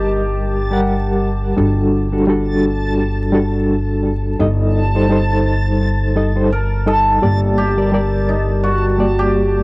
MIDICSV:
0, 0, Header, 1, 5, 480
1, 0, Start_track
1, 0, Key_signature, -2, "minor"
1, 0, Tempo, 705882
1, 1066, Time_signature, 4, 2, 24, 8
1, 6549, End_track
2, 0, Start_track
2, 0, Title_t, "Synth texture"
2, 0, Program_c, 0, 99
2, 0, Note_on_c, 0, 81, 79
2, 6549, Note_off_c, 0, 81, 0
2, 6549, End_track
3, 0, Start_track
3, 0, Title_t, "Hammered dulcimer"
3, 0, Program_c, 1, 15
3, 0, Note_on_c, 1, 63, 80
3, 0, Note_on_c, 1, 67, 86
3, 1608, Note_off_c, 1, 63, 0
3, 2013, Note_off_c, 1, 67, 0
3, 4438, Note_on_c, 1, 70, 80
3, 4676, Note_on_c, 1, 69, 89
3, 4717, Note_off_c, 1, 70, 0
3, 5154, Note_on_c, 1, 67, 95
3, 5637, Note_on_c, 1, 63, 77
3, 5700, Note_off_c, 1, 63, 0
3, 5872, Note_on_c, 1, 66, 88
3, 5913, Note_off_c, 1, 67, 0
3, 6249, Note_on_c, 1, 67, 86
3, 6289, Note_off_c, 1, 66, 0
3, 6549, Note_off_c, 1, 67, 0
3, 6549, Note_off_c, 1, 69, 0
3, 6549, End_track
4, 0, Start_track
4, 0, Title_t, "Reed electric piano"
4, 0, Program_c, 2, 4
4, 0, Note_on_c, 2, 55, 69
4, 0, Note_on_c, 2, 67, 65
4, 0, Note_on_c, 2, 70, 62
4, 0, Note_on_c, 2, 75, 81
4, 447, Note_off_c, 2, 55, 0
4, 450, Note_off_c, 2, 67, 0
4, 453, Note_off_c, 2, 70, 0
4, 456, Note_off_c, 2, 75, 0
4, 481, Note_on_c, 2, 55, 80
4, 486, Note_on_c, 2, 67, 77
4, 492, Note_on_c, 2, 70, 67
4, 498, Note_on_c, 2, 78, 83
4, 1040, Note_off_c, 2, 55, 0
4, 1042, Note_off_c, 2, 67, 0
4, 1046, Note_off_c, 2, 70, 0
4, 1048, Note_off_c, 2, 78, 0
4, 1064, Note_on_c, 2, 55, 65
4, 1068, Note_on_c, 2, 62, 59
4, 1070, Note_on_c, 2, 66, 59
4, 1073, Note_on_c, 2, 69, 69
4, 1408, Note_off_c, 2, 55, 0
4, 1411, Note_off_c, 2, 62, 0
4, 1412, Note_off_c, 2, 66, 0
4, 1413, Note_off_c, 2, 69, 0
4, 1442, Note_on_c, 2, 55, 67
4, 1442, Note_on_c, 2, 62, 61
4, 1447, Note_on_c, 2, 66, 62
4, 1449, Note_on_c, 2, 69, 73
4, 1521, Note_off_c, 2, 55, 0
4, 1521, Note_off_c, 2, 62, 0
4, 1523, Note_off_c, 2, 66, 0
4, 1524, Note_off_c, 2, 69, 0
4, 1544, Note_on_c, 2, 55, 74
4, 1551, Note_on_c, 2, 62, 68
4, 1556, Note_on_c, 2, 66, 69
4, 1562, Note_on_c, 2, 69, 84
4, 2240, Note_off_c, 2, 55, 0
4, 2244, Note_off_c, 2, 62, 0
4, 2246, Note_off_c, 2, 66, 0
4, 2249, Note_off_c, 2, 69, 0
4, 2258, Note_on_c, 2, 55, 70
4, 2264, Note_on_c, 2, 62, 58
4, 2270, Note_on_c, 2, 66, 59
4, 2275, Note_on_c, 2, 69, 75
4, 2957, Note_off_c, 2, 55, 0
4, 2960, Note_off_c, 2, 62, 0
4, 2963, Note_off_c, 2, 66, 0
4, 2965, Note_off_c, 2, 69, 0
4, 2986, Note_on_c, 2, 55, 67
4, 2990, Note_on_c, 2, 63, 60
4, 2992, Note_on_c, 2, 69, 55
4, 2995, Note_on_c, 2, 75, 70
4, 3330, Note_off_c, 2, 55, 0
4, 3332, Note_off_c, 2, 63, 0
4, 3333, Note_off_c, 2, 69, 0
4, 3334, Note_off_c, 2, 75, 0
4, 3364, Note_on_c, 2, 55, 76
4, 3368, Note_on_c, 2, 63, 68
4, 3369, Note_on_c, 2, 69, 66
4, 3373, Note_on_c, 2, 72, 79
4, 3442, Note_off_c, 2, 55, 0
4, 3444, Note_off_c, 2, 63, 0
4, 3444, Note_off_c, 2, 69, 0
4, 3446, Note_off_c, 2, 72, 0
4, 3464, Note_on_c, 2, 55, 76
4, 3471, Note_on_c, 2, 63, 67
4, 3476, Note_on_c, 2, 69, 67
4, 3482, Note_on_c, 2, 72, 81
4, 4164, Note_off_c, 2, 55, 0
4, 4167, Note_off_c, 2, 63, 0
4, 4170, Note_off_c, 2, 69, 0
4, 4173, Note_off_c, 2, 72, 0
4, 4189, Note_on_c, 2, 55, 63
4, 4191, Note_on_c, 2, 63, 58
4, 4193, Note_on_c, 2, 69, 62
4, 4196, Note_on_c, 2, 75, 71
4, 4291, Note_off_c, 2, 55, 0
4, 4292, Note_off_c, 2, 63, 0
4, 4293, Note_off_c, 2, 69, 0
4, 4295, Note_off_c, 2, 75, 0
4, 4322, Note_on_c, 2, 55, 68
4, 4325, Note_on_c, 2, 63, 62
4, 4328, Note_on_c, 2, 69, 60
4, 4330, Note_on_c, 2, 72, 81
4, 4413, Note_off_c, 2, 55, 0
4, 4414, Note_off_c, 2, 63, 0
4, 4416, Note_off_c, 2, 69, 0
4, 4417, Note_off_c, 2, 72, 0
4, 4667, Note_on_c, 2, 55, 68
4, 4668, Note_on_c, 2, 63, 58
4, 4671, Note_on_c, 2, 69, 62
4, 4674, Note_on_c, 2, 75, 71
4, 4881, Note_off_c, 2, 55, 0
4, 4882, Note_off_c, 2, 63, 0
4, 4884, Note_off_c, 2, 69, 0
4, 4885, Note_off_c, 2, 75, 0
4, 4909, Note_on_c, 2, 55, 63
4, 4912, Note_on_c, 2, 67, 62
4, 4915, Note_on_c, 2, 58, 63
4, 4916, Note_on_c, 2, 74, 71
4, 5251, Note_off_c, 2, 55, 0
4, 5253, Note_off_c, 2, 67, 0
4, 5254, Note_off_c, 2, 58, 0
4, 5255, Note_off_c, 2, 74, 0
4, 5283, Note_on_c, 2, 55, 69
4, 5287, Note_on_c, 2, 67, 60
4, 5289, Note_on_c, 2, 70, 64
4, 5291, Note_on_c, 2, 74, 76
4, 5361, Note_off_c, 2, 55, 0
4, 5363, Note_off_c, 2, 67, 0
4, 5364, Note_off_c, 2, 70, 0
4, 5365, Note_off_c, 2, 74, 0
4, 5385, Note_on_c, 2, 55, 68
4, 5397, Note_on_c, 2, 70, 66
4, 5401, Note_on_c, 2, 74, 77
4, 6080, Note_off_c, 2, 55, 0
4, 6086, Note_off_c, 2, 70, 0
4, 6089, Note_off_c, 2, 74, 0
4, 6104, Note_on_c, 2, 55, 66
4, 6109, Note_on_c, 2, 67, 57
4, 6115, Note_on_c, 2, 58, 61
4, 6121, Note_on_c, 2, 74, 74
4, 6549, Note_off_c, 2, 55, 0
4, 6549, Note_off_c, 2, 58, 0
4, 6549, Note_off_c, 2, 67, 0
4, 6549, Note_off_c, 2, 74, 0
4, 6549, End_track
5, 0, Start_track
5, 0, Title_t, "Upright bass"
5, 0, Program_c, 3, 32
5, 0, Note_on_c, 3, 31, 79
5, 1048, Note_off_c, 3, 31, 0
5, 1071, Note_on_c, 3, 31, 78
5, 2968, Note_off_c, 3, 31, 0
5, 2990, Note_on_c, 3, 31, 78
5, 4887, Note_off_c, 3, 31, 0
5, 4916, Note_on_c, 3, 31, 78
5, 6549, Note_off_c, 3, 31, 0
5, 6549, End_track
0, 0, End_of_file